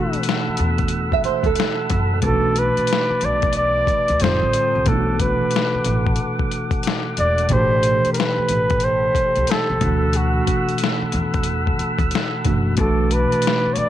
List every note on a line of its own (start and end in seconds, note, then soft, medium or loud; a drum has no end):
0.00 1.85 B2 medium
0.00 1.86 E3 medium
0.00 1.86 A3 medium
0.00 1.87 D4 medium
0.00 0.23 F#4 medium
0.00 1.91 F#4 medium
0.00 2.19 A4 medium
0.00 2.20 F#5 medium
0.00 2.19 B5 medium
0.00 2.20 E6 medium
0.13 muted upright bass stroke soft
0.13 closed hi-hat soft
0.23 closed hi-hat medium
0.29 snare loud
0.48 muted upright bass stroke soft
0.57 1.17 E2 medium
0.57 closed hi-hat medium
0.78 kick medium
0.78 closed hi-hat soft
0.88 closed hi-hat medium
1.12 1.24 E5 medium
1.12 kick medium
1.24 1.45 C5 medium
1.24 muted upright bass stroke soft
1.24 closed hi-hat soft
1.43 1.55 D2 medium
1.43 2.19 A4 medium
1.43 kick medium
1.43 closed hi-hat soft
1.56 closed hi-hat medium
1.60 snare loud
1.90 2.19 F#1 loud
1.90 kick loud
1.90 closed hi-hat medium
2.20 2.70 B1 loud
2.20 4.15 B2 medium
2.20 4.16 E3 medium
2.20 4.17 A3 medium
2.20 4.19 B4 medium
2.20 4.19 A5 medium
2.20 4.19 D6 medium
2.20 kick loud
2.20 closed hi-hat medium
2.26 4.18 D4 medium
2.26 4.19 F#4 medium
2.26 2.60 A4 loud
2.56 3.26 B4 loud
2.56 closed hi-hat medium
2.77 muted upright bass stroke soft
2.77 closed hi-hat soft
2.87 closed hi-hat medium
2.93 snare loud
3.11 muted upright bass stroke soft
3.21 3.80 B1 medium
3.21 closed hi-hat medium
3.25 3.56 D5 loud
3.42 kick medium
3.42 closed hi-hat soft
3.53 closed hi-hat medium
3.57 4.24 D5 loud
3.87 muted upright bass stroke soft
3.87 kick medium
3.87 closed hi-hat medium
4.08 4.20 D2 medium
4.08 closed hi-hat soft
4.20 4.40 F1 medium
4.20 4.29 G#2 medium
4.20 4.87 D3 medium
4.20 4.88 G3 medium
4.20 4.88 C4 medium
4.20 4.86 A4 medium
4.20 4.90 C5 loud
4.20 4.86 G5 medium
4.20 4.86 D#6 medium
4.20 closed hi-hat medium
4.24 4.90 A2 medium
4.24 4.89 F4 medium
4.24 snare loud
4.42 4.53 A1 medium
4.53 closed hi-hat medium
4.75 4.87 C2 medium
4.85 5.34 B1 loud
4.85 7.46 B2 medium
4.85 7.46 E3 medium
4.85 7.47 A3 medium
4.85 7.48 A4 medium
4.85 5.22 A4 medium
4.85 7.48 F#5 medium
4.85 7.48 D6 medium
4.85 kick loud
4.85 closed hi-hat medium
4.90 7.48 D4 medium
4.90 4.98 E4 medium
4.98 7.52 F#4 medium
5.20 6.19 B4 medium
5.20 kick loud
5.20 closed hi-hat medium
5.41 muted upright bass stroke soft
5.51 closed hi-hat medium
5.56 snare loud
5.75 muted upright bass stroke soft
5.84 6.15 A1 medium
5.84 closed hi-hat medium
6.07 kick medium
6.16 closed hi-hat medium
6.39 kick medium
6.51 closed hi-hat medium
6.71 kick medium
6.71 closed hi-hat soft
6.83 closed hi-hat medium
6.87 snare loud
7.17 7.47 E1 medium
7.17 7.54 D5 loud
7.17 closed hi-hat medium
7.38 closed hi-hat soft
7.49 7.98 A1 loud
7.49 9.76 B2 medium
7.49 9.77 E3 medium
7.49 9.78 A3 medium
7.49 9.79 G4 medium
7.49 12.74 A4 medium
7.49 9.79 B5 medium
7.49 kick loud
7.49 closed hi-hat medium
7.53 9.79 D4 medium
7.53 7.61 F#4 medium
7.53 8.12 C5 loud
7.62 9.83 G4 medium
7.83 closed hi-hat medium
8.05 muted upright bass stroke soft
8.05 closed hi-hat soft
8.13 8.20 A#4 medium
8.13 closed hi-hat medium
8.18 8.85 B4 loud
8.18 snare loud
8.38 muted upright bass stroke soft
8.49 9.07 A1 medium
8.49 closed hi-hat medium
8.70 kick medium
8.70 closed hi-hat soft
8.80 9.52 C5 loud
8.80 closed hi-hat medium
9.15 muted upright bass stroke soft
9.15 kick medium
9.15 closed hi-hat medium
9.36 9.47 C2 medium
9.36 closed hi-hat soft
9.47 10.18 A4 medium
9.47 muted upright bass stroke soft
9.47 closed hi-hat medium
9.51 snare loud
9.70 9.80 C2 medium
9.79 10.39 D2 loud
9.79 12.40 B2 medium
9.79 12.41 E3 medium
9.79 12.42 A3 medium
9.79 12.75 F#5 medium
9.79 12.75 B5 medium
9.79 12.75 E6 medium
9.79 kick loud
9.79 closed hi-hat medium
9.84 12.42 D4 medium
9.84 12.43 F#4 medium
10.13 10.81 F#4 medium
10.13 closed hi-hat medium
10.47 kick loud
10.47 closed hi-hat medium
10.69 muted upright bass stroke soft
10.69 closed hi-hat soft
10.78 closed hi-hat medium
10.84 snare loud
11.02 muted upright bass stroke soft
11.12 11.71 E2 loud
11.12 closed hi-hat medium
11.34 kick medium
11.34 closed hi-hat soft
11.43 closed hi-hat medium
11.67 kick medium
11.79 muted upright bass stroke soft
11.79 closed hi-hat medium
11.99 12.10 D2 medium
11.99 kick medium
11.99 closed hi-hat soft
12.11 closed hi-hat medium
12.15 snare loud
12.45 12.74 F#1 medium
12.45 12.74 B2 medium
12.45 12.76 E3 medium
12.45 12.78 A3 medium
12.45 12.79 D4 medium
12.45 12.79 F#4 medium
12.45 kick loud
12.45 closed hi-hat medium
12.75 13.25 B1 loud
12.75 13.89 B2 medium
12.75 13.89 E3 medium
12.75 13.89 A3 medium
12.75 13.14 A4 medium
12.75 13.89 B4 medium
12.75 13.89 A5 medium
12.75 13.89 D6 medium
12.75 kick loud
12.75 closed hi-hat medium
12.81 13.89 D4 medium
12.81 13.89 F#4 medium
13.11 13.75 B4 loud
13.11 closed hi-hat medium
13.32 muted upright bass stroke soft
13.32 closed hi-hat soft
13.42 closed hi-hat medium
13.47 snare loud
13.66 muted upright bass stroke soft
13.73 13.80 C#5 medium
13.73 closed hi-hat medium
13.77 13.89 B1 medium
13.77 13.89 D5 loud